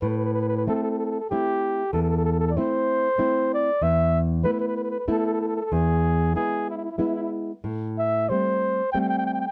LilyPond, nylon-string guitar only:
\new Staff \with { instrumentName = "Nylon-string guitar" } { \time 3/4 \key a \minor \tempo 4 = 95 a,4 <a c' e'>4 <a c' e'>4 | e,4 <a c' e'>4 <a c' e'>4 | e,4 <a b e'>4 <a b e'>4 | e,4 <gis b e'>4 <gis b e'>4 |
a,4 <g a c'>4 <g a c'>4 | }